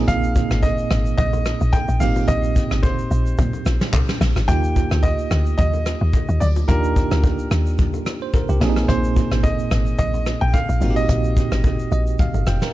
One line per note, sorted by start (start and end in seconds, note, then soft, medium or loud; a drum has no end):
0.00 1.96 A#2 medium
0.00 1.97 A#3 medium
0.00 1.97 C4 medium
0.00 1.98 D#4 medium
0.00 1.98 G#4 medium
0.08 0.44 A#1 loud
0.08 0.59 F5 loud
0.08 kick loud
0.08 hi-hat pedal medium
0.08 low conga medium
0.08 shaker medium
0.23 shaker medium
0.36 kick loud
0.36 low bongo medium
0.36 shaker loud
0.51 0.85 G#1 loud
0.51 cross-stick medium
0.51 low bongo medium
0.51 shaker medium
0.63 1.16 D#5 loud
0.63 kick loud
0.63 high bongo medium
0.63 shaker medium
0.78 shaker medium
0.91 1.14 G#1 loud
0.91 cross-stick loud
0.91 shaker medium
1.06 shaker soft
1.18 1.55 A#1 loud
1.18 1.75 D#5 loud
1.18 kick loud
1.18 low conga medium
1.18 shaker medium
1.33 high bongo medium
1.33 shaker soft
1.46 cross-stick medium
1.46 low bongo medium
1.46 shaker loud
1.61 1.72 A#1 medium
1.61 shaker medium
1.73 2.01 G5 loud
1.73 kick loud
1.73 high bongo medium
1.73 shaker medium
1.88 1.99 A#1 loud
1.88 shaker medium
2.00 2.24 G#1 loud
2.00 4.17 A#2 medium
2.00 4.17 A#3 medium
2.00 4.17 C4 medium
2.00 4.18 D#4 medium
2.00 4.18 G4 medium
2.00 2.29 F5 loud
2.00 open hi-hat medium
2.00 low conga medium
2.00 shaker loud
2.16 low bongo medium
2.16 shaker medium
2.28 2.65 A#1 loud
2.28 2.79 D#5 loud
2.28 kick loud
2.28 hi-hat pedal medium
2.28 low conga medium
2.28 shaker medium
2.43 shaker medium
2.56 kick loud
2.56 shaker loud
2.71 3.05 G#1 medium
2.71 cross-stick medium
2.71 shaker medium
2.83 4.17 C5 medium
2.83 kick loud
2.83 high bongo medium
2.83 shaker medium
2.99 shaker medium
3.11 3.34 A#1 loud
3.11 shaker medium
3.26 shaker medium
3.38 3.51 A#2 loud
3.38 kick loud
3.38 low conga medium
3.38 shaker medium
3.53 high bongo medium
3.53 shaker soft
3.66 3.79 A#1 medium
3.66 cross-stick medium
3.66 low bongo medium
3.66 shaker medium
3.81 snare medium
3.81 shaker medium
3.93 4.06 C2 loud
3.93 kick loud
3.93 clap loud
3.93 high bongo medium
3.93 shaker medium
4.09 cross-stick loud
4.09 snare medium
4.09 shaker medium
4.21 4.34 A#1 loud
4.21 cross-stick loud
4.21 snare medium
4.21 open hi-hat medium
4.21 low conga medium
4.21 shaker loud
4.36 4.47 G#1 medium
4.36 cross-stick medium
4.36 low bongo medium
4.36 shaker medium
4.48 4.85 D#2 loud
4.48 6.65 A#3 medium
4.48 6.64 D#4 medium
4.48 6.66 F4 medium
4.48 6.66 G4 medium
4.48 5.05 G5 loud
4.48 kick loud
4.48 hi-hat pedal medium
4.48 low conga medium
4.48 shaker medium
4.64 shaker medium
4.76 kick medium
4.76 low bongo medium
4.76 shaker loud
4.91 5.25 D2 loud
4.91 cross-stick medium
4.91 low bongo medium
4.91 shaker medium
5.03 5.56 D#5 loud
5.03 kick loud
5.03 high bongo medium
5.03 shaker medium
5.19 shaker medium
5.31 5.55 D2 loud
5.31 cross-stick loud
5.31 shaker medium
5.46 shaker medium
5.58 5.95 D#2 loud
5.58 6.43 D#5 loud
5.58 kick loud
5.58 low conga medium
5.58 shaker medium
5.74 high bongo medium
5.74 shaker soft
5.86 cross-stick medium
5.86 low bongo medium
5.86 shaker loud
6.01 6.12 D#2 medium
6.13 kick loud
6.13 high bongo medium
6.13 shaker medium
6.29 6.39 D#2 loud
6.29 shaker medium
6.40 6.65 D2 loud
6.40 6.47 D5 medium
6.40 open hi-hat medium
6.40 low conga medium
6.40 shaker medium
6.56 low bongo medium
6.56 shaker medium
6.68 7.05 D#2 loud
6.68 8.57 A#3 medium
6.68 8.58 D4 medium
6.68 8.57 D#4 medium
6.68 8.58 F4 medium
6.68 7.78 G4 medium
6.68 7.47 A#4 medium
6.68 kick loud
6.68 hi-hat pedal medium
6.68 low conga medium
6.68 shaker medium
6.84 shaker medium
6.96 kick loud
6.96 low bongo medium
6.96 shaker loud
7.11 7.45 D2 medium
7.11 cross-stick medium
7.11 low bongo medium
7.11 shaker medium
7.24 kick loud
7.24 high bongo medium
7.24 shaker medium
7.39 shaker medium
7.51 7.98 D#2 medium
7.51 cross-stick loud
7.51 shaker medium
7.66 shaker medium
7.79 kick loud
7.79 low conga medium
7.79 shaker medium
7.94 high bongo medium
7.94 shaker soft
8.06 cross-stick medium
8.06 low bongo medium
8.06 shaker loud
8.22 8.34 C5 medium
8.34 8.49 A#4 medium
8.34 kick loud
8.34 high bongo medium
8.34 shaker medium
8.49 8.59 C2 loud
8.49 8.75 G4 medium
8.49 shaker medium
8.60 8.85 A#1 loud
8.60 10.77 A#2 medium
8.60 10.77 A#3 medium
8.60 10.78 C4 medium
8.60 8.69 D4 medium
8.60 10.79 G#4 medium
8.60 cross-stick loud
8.60 snare medium
8.60 open hi-hat medium
8.60 low conga medium
8.60 shaker medium
8.69 10.81 D#4 medium
8.76 cross-stick medium
8.76 low bongo medium
8.76 shaker medium
8.88 9.25 A#1 loud
8.88 9.40 C5 medium
8.88 kick loud
8.88 hi-hat pedal medium
8.88 low conga medium
8.88 shaker medium
9.04 shaker medium
9.16 kick loud
9.16 low bongo medium
9.16 shaker loud
9.31 9.66 G#1 medium
9.31 cross-stick medium
9.31 low bongo medium
9.31 shaker medium
9.43 9.97 D#5 loud
9.43 kick loud
9.43 high bongo medium
9.43 shaker medium
9.59 shaker medium
9.71 9.95 G#1 loud
9.71 cross-stick loud
9.71 shaker medium
9.87 shaker medium
9.99 10.35 A#1 loud
9.99 10.38 D#5 loud
9.99 kick loud
9.99 low conga medium
9.99 shaker medium
10.14 high bongo medium
10.14 shaker soft
10.26 cross-stick medium
10.26 low bongo medium
10.26 shaker medium
10.41 10.52 A#1 medium
10.41 10.54 G5 loud
10.54 10.93 F5 loud
10.54 kick loud
10.54 high bongo medium
10.54 shaker medium
10.69 10.80 A#1 loud
10.69 shaker medium
10.81 11.05 G#1 loud
10.81 12.73 A#2 medium
10.81 12.73 A#3 medium
10.81 12.73 C4 medium
10.81 12.73 D#4 medium
10.81 10.90 F#4 medium
10.81 open hi-hat medium
10.81 low conga medium
10.81 shaker medium
10.90 12.73 G4 medium
10.96 12.03 D#5 loud
10.96 low bongo medium
10.96 shaker medium
11.09 11.45 A#1 loud
11.09 kick loud
11.09 hi-hat pedal medium
11.09 low conga medium
11.09 shaker medium
11.24 shaker medium
11.37 kick loud
11.37 low bongo medium
11.37 shaker loud
11.52 11.86 G#1 medium
11.52 cross-stick medium
11.52 low bongo medium
11.52 shaker medium
11.64 kick loud
11.64 high bongo medium
11.64 shaker medium
11.79 shaker medium
11.92 12.15 A#1 loud
11.92 12.18 D#5 medium
11.92 shaker medium
12.07 shaker soft
12.19 12.45 F5 medium
12.19 kick loud
12.19 low conga medium
12.19 shaker medium
12.34 12.45 G1 medium
12.34 high bongo medium
12.34 shaker soft
12.47 12.60 F1 loud
12.47 12.73 G5 medium
12.47 cross-stick medium
12.47 low bongo medium
12.47 shaker loud
12.62 12.73 A#4 medium
12.62 snare medium
12.62 shaker medium